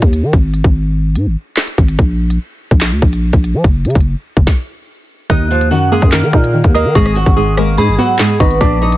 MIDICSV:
0, 0, Header, 1, 6, 480
1, 0, Start_track
1, 0, Key_signature, -6, "minor"
1, 0, Tempo, 413793
1, 386, Time_signature, 4, 2, 24, 8
1, 10409, End_track
2, 0, Start_track
2, 0, Title_t, "Synth bell"
2, 0, Program_c, 0, 98
2, 6147, Note_on_c, 0, 90, 110
2, 7060, Note_off_c, 0, 90, 0
2, 7102, Note_on_c, 0, 89, 85
2, 7781, Note_off_c, 0, 89, 0
2, 7825, Note_on_c, 0, 87, 90
2, 8053, Note_off_c, 0, 87, 0
2, 8066, Note_on_c, 0, 85, 99
2, 8979, Note_off_c, 0, 85, 0
2, 9026, Note_on_c, 0, 83, 88
2, 9703, Note_off_c, 0, 83, 0
2, 9746, Note_on_c, 0, 85, 92
2, 9974, Note_off_c, 0, 85, 0
2, 9985, Note_on_c, 0, 86, 114
2, 10409, Note_off_c, 0, 86, 0
2, 10409, End_track
3, 0, Start_track
3, 0, Title_t, "Nylon-string guitar"
3, 0, Program_c, 1, 24
3, 6146, Note_on_c, 1, 63, 113
3, 6155, Note_on_c, 1, 75, 88
3, 6356, Note_off_c, 1, 63, 0
3, 6361, Note_off_c, 1, 75, 0
3, 6386, Note_on_c, 1, 65, 77
3, 6395, Note_on_c, 1, 53, 63
3, 6596, Note_off_c, 1, 65, 0
3, 6601, Note_off_c, 1, 53, 0
3, 6622, Note_on_c, 1, 66, 84
3, 6632, Note_on_c, 1, 54, 64
3, 6834, Note_off_c, 1, 66, 0
3, 6839, Note_off_c, 1, 54, 0
3, 6867, Note_on_c, 1, 68, 89
3, 6876, Note_on_c, 1, 56, 70
3, 7076, Note_off_c, 1, 68, 0
3, 7081, Note_off_c, 1, 56, 0
3, 7105, Note_on_c, 1, 70, 91
3, 7115, Note_on_c, 1, 58, 69
3, 7782, Note_off_c, 1, 70, 0
3, 7787, Note_off_c, 1, 58, 0
3, 7825, Note_on_c, 1, 70, 84
3, 7834, Note_on_c, 1, 58, 71
3, 8035, Note_off_c, 1, 70, 0
3, 8040, Note_off_c, 1, 58, 0
3, 8069, Note_on_c, 1, 68, 114
3, 8078, Note_on_c, 1, 56, 93
3, 8278, Note_off_c, 1, 68, 0
3, 8283, Note_off_c, 1, 56, 0
3, 8307, Note_on_c, 1, 66, 86
3, 8316, Note_on_c, 1, 54, 60
3, 8517, Note_off_c, 1, 66, 0
3, 8522, Note_off_c, 1, 54, 0
3, 8542, Note_on_c, 1, 68, 80
3, 8551, Note_on_c, 1, 56, 62
3, 8754, Note_off_c, 1, 68, 0
3, 8759, Note_off_c, 1, 56, 0
3, 8786, Note_on_c, 1, 70, 87
3, 8795, Note_on_c, 1, 58, 69
3, 8996, Note_off_c, 1, 70, 0
3, 9001, Note_off_c, 1, 58, 0
3, 9026, Note_on_c, 1, 68, 87
3, 9036, Note_on_c, 1, 56, 67
3, 9236, Note_off_c, 1, 68, 0
3, 9241, Note_off_c, 1, 56, 0
3, 9263, Note_on_c, 1, 66, 91
3, 9272, Note_on_c, 1, 54, 68
3, 9474, Note_off_c, 1, 66, 0
3, 9479, Note_off_c, 1, 54, 0
3, 9503, Note_on_c, 1, 68, 84
3, 9512, Note_on_c, 1, 56, 70
3, 9714, Note_off_c, 1, 68, 0
3, 9719, Note_off_c, 1, 56, 0
3, 9750, Note_on_c, 1, 71, 84
3, 9759, Note_on_c, 1, 59, 62
3, 9958, Note_off_c, 1, 71, 0
3, 9963, Note_off_c, 1, 59, 0
3, 9984, Note_on_c, 1, 62, 99
3, 9994, Note_on_c, 1, 74, 85
3, 10195, Note_off_c, 1, 62, 0
3, 10200, Note_off_c, 1, 74, 0
3, 10227, Note_on_c, 1, 63, 81
3, 10237, Note_on_c, 1, 75, 67
3, 10409, Note_off_c, 1, 63, 0
3, 10409, Note_off_c, 1, 75, 0
3, 10409, End_track
4, 0, Start_track
4, 0, Title_t, "Synth pluck"
4, 0, Program_c, 2, 84
4, 6144, Note_on_c, 2, 51, 94
4, 6611, Note_off_c, 2, 51, 0
4, 6625, Note_on_c, 2, 51, 91
4, 6863, Note_on_c, 2, 58, 98
4, 7088, Note_off_c, 2, 51, 0
4, 7102, Note_on_c, 2, 51, 93
4, 7350, Note_on_c, 2, 63, 85
4, 7567, Note_off_c, 2, 51, 0
4, 7581, Note_on_c, 2, 51, 78
4, 7829, Note_on_c, 2, 75, 85
4, 8063, Note_off_c, 2, 51, 0
4, 8065, Note_off_c, 2, 58, 0
4, 8066, Note_on_c, 2, 44, 100
4, 8068, Note_off_c, 2, 63, 0
4, 8068, Note_off_c, 2, 75, 0
4, 8531, Note_off_c, 2, 44, 0
4, 8545, Note_on_c, 2, 44, 88
4, 8789, Note_on_c, 2, 56, 89
4, 9014, Note_off_c, 2, 44, 0
4, 9028, Note_on_c, 2, 44, 93
4, 9262, Note_on_c, 2, 59, 91
4, 9495, Note_off_c, 2, 44, 0
4, 9509, Note_on_c, 2, 44, 89
4, 9746, Note_on_c, 2, 63, 94
4, 9982, Note_on_c, 2, 46, 93
4, 9984, Note_off_c, 2, 59, 0
4, 9986, Note_off_c, 2, 63, 0
4, 9987, Note_off_c, 2, 44, 0
4, 9987, Note_off_c, 2, 56, 0
4, 10409, Note_off_c, 2, 46, 0
4, 10409, End_track
5, 0, Start_track
5, 0, Title_t, "808-style bass"
5, 0, Program_c, 3, 38
5, 25, Note_on_c, 3, 39, 110
5, 265, Note_on_c, 3, 51, 94
5, 282, Note_off_c, 3, 39, 0
5, 379, Note_off_c, 3, 51, 0
5, 386, Note_on_c, 3, 32, 112
5, 731, Note_off_c, 3, 32, 0
5, 746, Note_on_c, 3, 32, 107
5, 1345, Note_on_c, 3, 44, 99
5, 1363, Note_off_c, 3, 32, 0
5, 1465, Note_on_c, 3, 32, 98
5, 1483, Note_off_c, 3, 44, 0
5, 1579, Note_off_c, 3, 32, 0
5, 2066, Note_on_c, 3, 32, 106
5, 2296, Note_off_c, 3, 32, 0
5, 2306, Note_on_c, 3, 34, 111
5, 2766, Note_off_c, 3, 34, 0
5, 3146, Note_on_c, 3, 34, 105
5, 3385, Note_on_c, 3, 38, 98
5, 3403, Note_off_c, 3, 34, 0
5, 3499, Note_off_c, 3, 38, 0
5, 3506, Note_on_c, 3, 34, 110
5, 3851, Note_off_c, 3, 34, 0
5, 3865, Note_on_c, 3, 34, 107
5, 4105, Note_on_c, 3, 53, 96
5, 4122, Note_off_c, 3, 34, 0
5, 4219, Note_off_c, 3, 53, 0
5, 4226, Note_on_c, 3, 30, 106
5, 4465, Note_on_c, 3, 49, 103
5, 4482, Note_off_c, 3, 30, 0
5, 4579, Note_off_c, 3, 49, 0
5, 4586, Note_on_c, 3, 30, 100
5, 4816, Note_off_c, 3, 30, 0
5, 5066, Note_on_c, 3, 30, 100
5, 5181, Note_off_c, 3, 30, 0
5, 6145, Note_on_c, 3, 39, 106
5, 6626, Note_on_c, 3, 42, 101
5, 6643, Note_off_c, 3, 39, 0
5, 6968, Note_off_c, 3, 42, 0
5, 6986, Note_on_c, 3, 42, 106
5, 7225, Note_on_c, 3, 51, 96
5, 7243, Note_off_c, 3, 42, 0
5, 7339, Note_off_c, 3, 51, 0
5, 7345, Note_on_c, 3, 46, 107
5, 7691, Note_off_c, 3, 46, 0
5, 7706, Note_on_c, 3, 39, 110
5, 7945, Note_on_c, 3, 51, 100
5, 7963, Note_off_c, 3, 39, 0
5, 8059, Note_off_c, 3, 51, 0
5, 8066, Note_on_c, 3, 32, 110
5, 8411, Note_off_c, 3, 32, 0
5, 8426, Note_on_c, 3, 32, 102
5, 9025, Note_on_c, 3, 44, 98
5, 9043, Note_off_c, 3, 32, 0
5, 9145, Note_on_c, 3, 32, 97
5, 9162, Note_off_c, 3, 44, 0
5, 9259, Note_off_c, 3, 32, 0
5, 9746, Note_on_c, 3, 32, 106
5, 9976, Note_off_c, 3, 32, 0
5, 9986, Note_on_c, 3, 34, 110
5, 10409, Note_off_c, 3, 34, 0
5, 10409, End_track
6, 0, Start_track
6, 0, Title_t, "Drums"
6, 23, Note_on_c, 9, 42, 78
6, 26, Note_on_c, 9, 36, 92
6, 139, Note_off_c, 9, 42, 0
6, 142, Note_off_c, 9, 36, 0
6, 151, Note_on_c, 9, 42, 92
6, 267, Note_off_c, 9, 42, 0
6, 386, Note_on_c, 9, 36, 114
6, 386, Note_on_c, 9, 42, 85
6, 502, Note_off_c, 9, 36, 0
6, 502, Note_off_c, 9, 42, 0
6, 621, Note_on_c, 9, 42, 61
6, 737, Note_off_c, 9, 42, 0
6, 746, Note_on_c, 9, 36, 102
6, 862, Note_off_c, 9, 36, 0
6, 1339, Note_on_c, 9, 42, 77
6, 1455, Note_off_c, 9, 42, 0
6, 1822, Note_on_c, 9, 39, 94
6, 1826, Note_on_c, 9, 38, 115
6, 1938, Note_off_c, 9, 39, 0
6, 1942, Note_off_c, 9, 38, 0
6, 1943, Note_on_c, 9, 42, 82
6, 2059, Note_off_c, 9, 42, 0
6, 2066, Note_on_c, 9, 36, 95
6, 2071, Note_on_c, 9, 42, 90
6, 2182, Note_off_c, 9, 36, 0
6, 2186, Note_off_c, 9, 42, 0
6, 2186, Note_on_c, 9, 42, 75
6, 2302, Note_off_c, 9, 42, 0
6, 2306, Note_on_c, 9, 36, 117
6, 2306, Note_on_c, 9, 42, 83
6, 2422, Note_off_c, 9, 36, 0
6, 2422, Note_off_c, 9, 42, 0
6, 2670, Note_on_c, 9, 42, 81
6, 2786, Note_off_c, 9, 42, 0
6, 3146, Note_on_c, 9, 36, 85
6, 3259, Note_on_c, 9, 42, 77
6, 3262, Note_off_c, 9, 36, 0
6, 3263, Note_on_c, 9, 39, 98
6, 3266, Note_on_c, 9, 38, 122
6, 3375, Note_off_c, 9, 42, 0
6, 3379, Note_off_c, 9, 39, 0
6, 3382, Note_off_c, 9, 38, 0
6, 3506, Note_on_c, 9, 36, 82
6, 3622, Note_off_c, 9, 36, 0
6, 3630, Note_on_c, 9, 42, 91
6, 3746, Note_off_c, 9, 42, 0
6, 3863, Note_on_c, 9, 42, 82
6, 3866, Note_on_c, 9, 36, 90
6, 3979, Note_off_c, 9, 42, 0
6, 3982, Note_off_c, 9, 36, 0
6, 3991, Note_on_c, 9, 42, 89
6, 4107, Note_off_c, 9, 42, 0
6, 4226, Note_on_c, 9, 36, 117
6, 4226, Note_on_c, 9, 42, 84
6, 4342, Note_off_c, 9, 36, 0
6, 4342, Note_off_c, 9, 42, 0
6, 4466, Note_on_c, 9, 42, 53
6, 4526, Note_off_c, 9, 42, 0
6, 4526, Note_on_c, 9, 42, 52
6, 4586, Note_off_c, 9, 42, 0
6, 4586, Note_on_c, 9, 36, 99
6, 4586, Note_on_c, 9, 42, 52
6, 4646, Note_off_c, 9, 42, 0
6, 4646, Note_on_c, 9, 42, 53
6, 4702, Note_off_c, 9, 36, 0
6, 4762, Note_off_c, 9, 42, 0
6, 5066, Note_on_c, 9, 36, 88
6, 5182, Note_off_c, 9, 36, 0
6, 5186, Note_on_c, 9, 36, 112
6, 5186, Note_on_c, 9, 38, 93
6, 5302, Note_off_c, 9, 36, 0
6, 5302, Note_off_c, 9, 38, 0
6, 6146, Note_on_c, 9, 36, 119
6, 6146, Note_on_c, 9, 42, 87
6, 6262, Note_off_c, 9, 36, 0
6, 6262, Note_off_c, 9, 42, 0
6, 6510, Note_on_c, 9, 42, 80
6, 6626, Note_off_c, 9, 42, 0
6, 6986, Note_on_c, 9, 36, 89
6, 7099, Note_on_c, 9, 42, 76
6, 7102, Note_off_c, 9, 36, 0
6, 7102, Note_on_c, 9, 39, 97
6, 7105, Note_on_c, 9, 38, 122
6, 7215, Note_off_c, 9, 42, 0
6, 7218, Note_off_c, 9, 39, 0
6, 7221, Note_off_c, 9, 38, 0
6, 7345, Note_on_c, 9, 36, 86
6, 7461, Note_off_c, 9, 36, 0
6, 7469, Note_on_c, 9, 42, 92
6, 7585, Note_off_c, 9, 42, 0
6, 7703, Note_on_c, 9, 42, 85
6, 7706, Note_on_c, 9, 36, 94
6, 7819, Note_off_c, 9, 42, 0
6, 7822, Note_off_c, 9, 36, 0
6, 7830, Note_on_c, 9, 42, 92
6, 7946, Note_off_c, 9, 42, 0
6, 8066, Note_on_c, 9, 36, 123
6, 8066, Note_on_c, 9, 42, 87
6, 8182, Note_off_c, 9, 36, 0
6, 8182, Note_off_c, 9, 42, 0
6, 8185, Note_on_c, 9, 37, 78
6, 8300, Note_on_c, 9, 42, 63
6, 8301, Note_off_c, 9, 37, 0
6, 8416, Note_off_c, 9, 42, 0
6, 8426, Note_on_c, 9, 36, 106
6, 8542, Note_off_c, 9, 36, 0
6, 8786, Note_on_c, 9, 37, 93
6, 8902, Note_off_c, 9, 37, 0
6, 9019, Note_on_c, 9, 42, 77
6, 9135, Note_off_c, 9, 42, 0
6, 9502, Note_on_c, 9, 39, 96
6, 9505, Note_on_c, 9, 38, 121
6, 9618, Note_off_c, 9, 39, 0
6, 9621, Note_off_c, 9, 38, 0
6, 9623, Note_on_c, 9, 42, 83
6, 9739, Note_off_c, 9, 42, 0
6, 9746, Note_on_c, 9, 36, 103
6, 9750, Note_on_c, 9, 42, 95
6, 9862, Note_off_c, 9, 36, 0
6, 9866, Note_off_c, 9, 42, 0
6, 9866, Note_on_c, 9, 42, 78
6, 9982, Note_off_c, 9, 42, 0
6, 9986, Note_on_c, 9, 36, 117
6, 9986, Note_on_c, 9, 42, 89
6, 10102, Note_off_c, 9, 36, 0
6, 10102, Note_off_c, 9, 42, 0
6, 10351, Note_on_c, 9, 42, 82
6, 10409, Note_off_c, 9, 42, 0
6, 10409, End_track
0, 0, End_of_file